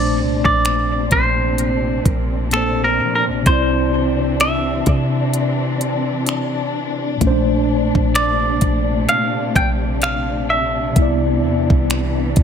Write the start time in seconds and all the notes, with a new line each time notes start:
Already playing: A#1 A#2 C3 A3 C4 D4 C5 D5
0.18 C2
0.45 A#1 D5, kick
0.65 finger snap, closed hi-hat
1.11 A#1 C5, kick, closed hi-hat
1.58 closed hi-hat
2.06 A#1 A#4, kick, closed hi-hat
2.51 A#2 A#3 D4 A4, finger snap, closed hi-hat
2.56 C5
2.84 A#4
3.00 F3
3.15 A#4
3.27 A#1
3.42 C2 C3 E3 C4, kick, closed hi-hat
3.47 E4 C5
3.52 D5
4.40 E5, finger snap, closed hi-hat
4.86 C3, kick, closed hi-hat
5.34 closed hi-hat
5.81 closed hi-hat
6.26 finger snap, closed hi-hat
7.17 A#2 A3
7.21 A#1 C3 A3 C#4, kick, closed hi-hat
7.27 D4 C5
7.95 A#1, kick
8.15 D5, finger snap, closed hi-hat
8.61 A#1, kick, closed hi-hat
9.09 F5, closed hi-hat
9.56 A#1 G5, kick, closed hi-hat
10.02 F5, finger snap, closed hi-hat
10.50 E5
10.92 C3 E3 B3, kick, closed hi-hat
10.96 C2 E4
11.02 D5
11.43 E2
11.70 C2, kick
11.90 finger snap, closed hi-hat
12.36 C2, kick, closed hi-hat